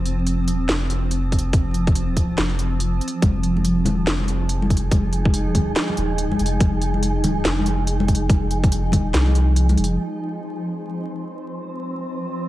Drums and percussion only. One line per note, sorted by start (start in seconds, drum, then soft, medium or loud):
0.06 closed hi-hat soft
0.27 closed hi-hat medium
0.48 closed hi-hat medium
0.69 snare loud
0.69 closed hi-hat soft
0.90 closed hi-hat soft
1.11 closed hi-hat medium
1.32 kick medium
1.32 closed hi-hat soft
1.39 closed hi-hat medium
1.53 kick loud
1.53 closed hi-hat medium
1.74 closed hi-hat soft
1.87 kick loud
1.87 closed hi-hat soft
1.95 closed hi-hat medium
2.17 kick medium
2.17 closed hi-hat medium
2.38 snare loud
2.38 closed hi-hat medium
2.59 closed hi-hat soft
2.80 closed hi-hat medium
3.01 closed hi-hat soft
3.08 closed hi-hat medium
3.22 kick loud
3.22 closed hi-hat medium
3.22 high conga loud
3.43 closed hi-hat soft
3.57 high conga medium
3.65 closed hi-hat medium
3.85 closed hi-hat medium
3.85 high conga medium
3.85 low conga medium
4.07 snare loud
4.07 closed hi-hat soft
4.20 high conga medium
4.28 closed hi-hat soft
4.49 closed hi-hat medium
4.62 high conga medium
4.70 kick medium
4.70 closed hi-hat soft
4.77 closed hi-hat medium
4.91 kick loud
4.91 closed hi-hat medium
4.91 high conga medium
5.13 closed hi-hat medium
5.25 kick loud
5.25 high conga medium
5.34 closed hi-hat medium
5.55 kick medium
5.55 closed hi-hat medium
5.55 high conga medium
5.55 low conga medium
5.76 snare loud
5.76 closed hi-hat medium
5.89 high conga medium
5.97 closed hi-hat soft
6.18 closed hi-hat medium
6.31 high conga medium
6.39 closed hi-hat soft
6.46 closed hi-hat medium
6.60 kick loud
6.60 closed hi-hat medium
6.60 high conga medium
6.82 closed hi-hat medium
6.94 high conga medium
7.03 closed hi-hat medium
7.24 closed hi-hat medium
7.24 high conga medium
7.24 low conga medium
7.45 snare loud
7.45 closed hi-hat medium
7.59 high conga medium
7.66 closed hi-hat medium
7.87 closed hi-hat medium
8.00 high conga medium
8.08 kick medium
8.08 closed hi-hat soft
8.15 closed hi-hat medium
8.29 kick loud
8.29 closed hi-hat medium
8.29 high conga medium
8.51 closed hi-hat medium
8.64 kick loud
8.64 closed hi-hat soft
8.64 high conga medium
8.72 closed hi-hat medium
8.92 kick medium
8.92 closed hi-hat medium
8.92 high conga medium
8.92 low conga medium
9.14 snare loud
9.14 closed hi-hat medium
9.27 high conga medium
9.35 closed hi-hat medium
9.56 closed hi-hat medium
9.69 closed hi-hat soft
9.69 high conga medium
9.78 closed hi-hat soft
9.84 closed hi-hat medium